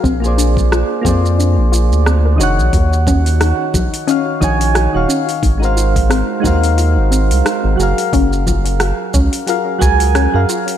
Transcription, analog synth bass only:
X:1
M:4/4
L:1/16
Q:"Swing 16ths" 1/4=89
K:Ebdor
V:1 name="Analog synth bass" clef=bass
B,,,4- B,,, z F,,3 B,,,2 =D,,3 F,,, B,,, | E,,4- E,, z B,,, z3 B,,,3 E,,, z2 | A,,,4- A,,, z E,,3 A,,,2 C,, z A,,, G,,, z | G,,,4- G,,, z D,, z3 D,,3 G,, z2 |]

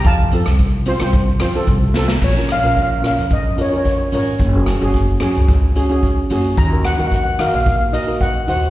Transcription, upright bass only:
X:1
M:4/4
L:1/16
Q:1/4=110
K:Fphr
V:1 name="Upright bass" clef=bass
F,,3 C,,4 C,,3 F,,2 C,,4 | [K:Bbm] B,,,3 B,,,3 B,, F,,6- F,, A,,,2 | G,,,3 G,,,3 G,, D,,6- D,, G,,,2 | E,,3 E,,3 E, B,,,6- B,,, E,,2 |]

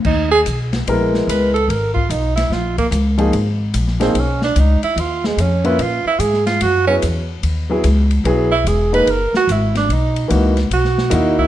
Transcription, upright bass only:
X:1
M:4/4
L:1/8
Q:"Swing" 1/4=146
K:Ebphr
V:1 name="Upright bass" clef=bass
E,,2 C,,2 B,,,2 D,,2 | A,,,2 C,,2 B,,,2 D,,2 | A,,,2 B,,,2 C,,2 D,, z | E,,2 =F,,2 B,, z A,,2 |
G,,2 F,,2 E,,2 D,,2 | C,,2 F,,,2 G,,, z A,,,2 | C,,2 D,,2 C,,2 E,,2 |]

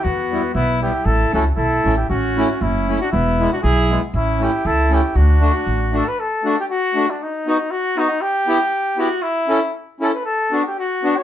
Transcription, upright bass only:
X:1
M:2/4
L:1/8
Q:"Swing" 1/4=118
K:D
V:1 name="Upright bass" clef=bass
E,,2 B,,,2 | A,,, C,, B,,, A,,, | A,,,2 F,,,2 | E,,,2 B,,,2 |
A,,,2 C,,2 | D,,2 A,,,2 | z4 | z4 |
z4 | z4 | z4 |]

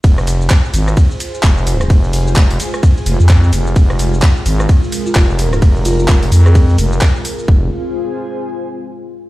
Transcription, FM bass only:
X:1
M:4/4
L:1/16
Q:"Swing 16ths" 1/4=129
K:Fm
V:1 name="FM bass" clef=bass
F,,,4 z2 A,,,2 z4 F,,,4 | F,,,4 F,,,2 z4 F,,, F,,3 F,,,2 | F,,,4 z2 A,,,2 z4 F,,,4 | F,,,4 F,,,2 F,,4 F,,,2 z4 |
F,,,2 z12 z2 |]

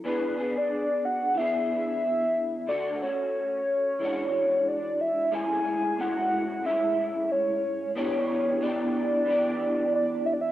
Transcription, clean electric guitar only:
X:1
M:4/4
L:1/8
Q:"Swing 16ths" 1/4=91
K:A
V:1 name="Clean electric guitar"
[E,B,DG] [B,DG]3 [E,B,DG]4 | [D,A,F] [A,CF]3 [E,G,DF]4 | [A,,G,CE]2 [A,,G,CE]2 [A,,G,CE]4 | [E,B,D=G]2 [E,B,DG]2 [E,B,DG]4 |]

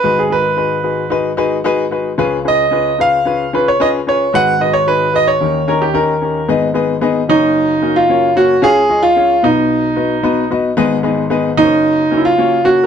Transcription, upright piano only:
X:1
M:4/4
L:1/8
Q:1/4=112
K:G#dor
V:1 name="Upright piano"
[DFGB] [DFGA] [DFGB] [DFGB] [DFGB] [DFGB] [DFGB] [DFGB] | [CEGB] [CEGB] [CEGB] [CEGB] [CEGB] [CEGB] [CEGB] [CEGB] | [DFGB] [DFGB] [DFGc] [DFGB] [CD=GA] [CDGc] [CDGA] [CDGA] | [B,DGBd] [B,DGBd] [B,DGBd] [A,CFGAc]2 [A,CFAd] [A,CFAc] [A,CFAc] |
[CEGce] [CEGcd] [CEGce] [B,DFBd]2 [B,DFBd] [B,DFBd] [B,DFBd] | [B,DGBd] [B,DGBd] [B,DGBd] [A,CFA^Bc]2 [A,CFAc] [A,CFAc] [A,CFAc] |]
V:2 name="Upright piano" clef=bass
[G,,,G,,]8 | [C,,C,]8 | [G,,,G,,]4 [D,,D,]4 | [G,,,G,,]3 [F,,,F,,]4- [F,,,F,,] |
[C,,C,]3 [B,,,B,,]4- [B,,,B,,] | [G,,,G,,]3 [F,,,F,,]4- [F,,,F,,] |]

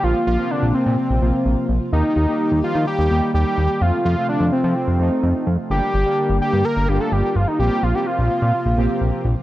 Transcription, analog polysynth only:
X:1
M:4/4
L:1/16
Q:1/4=127
K:Bb
V:1 name="Analog polysynth"
[B,CF]2 z [B,CF]4- [B,CF] z2 [B,CF]4 z2 | [B,EG]2 z [B,EG]4- [B,EG] z2 [B,EG]4 z2 | [A,CF]2 z [A,CF]4- [A,CF] z2 [A,CE]4 z2 | [B,DG]2 z [B,DG]4- [B,DG] z2 [B,DF]4 z2 |
[B,CF]2 z [B,CF]4- [B,CF] z2 [B,CG]4 z2 |]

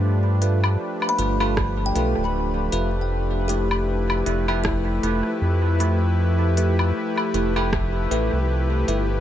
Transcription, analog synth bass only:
X:1
M:4/4
L:1/16
Q:"Swing 16ths" 1/4=78
K:Flyd
V:1 name="Analog synth bass" clef=bass
G,,4 z2 G,,,4 B,,, D,,,3 F,,,2- | F,,,6 F,,,4 F,,, z F,,4- | F,,4 z2 F,,,4 A,,, C,,3 G,,,2 |]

